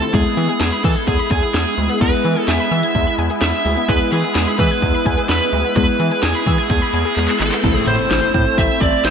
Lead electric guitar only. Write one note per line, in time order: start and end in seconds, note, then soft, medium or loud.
0.00 0.14 A4 medium
0.14 0.59 G#4 medium
0.61 0.84 G#4 medium
0.84 1.06 A4 medium
1.08 1.30 G#4 medium
1.31 2.01 G#4 medium
2.01 2.49 B4 loud
2.48 3.14 E5 loud
3.42 3.90 E5 loud
3.89 4.12 B4 loud
4.12 4.59 G#4 medium
4.59 5.28 B4 loud
5.29 5.75 B4 loud
5.76 6.23 B4 loud
6.24 6.69 G#4 medium
6.70 7.37 G#4 medium
7.41 7.84 A4 medium
7.88 8.60 C5 loud
8.58 8.81 E5 loud
8.81 9.03 D5 medium
9.05 9.10 C5 loud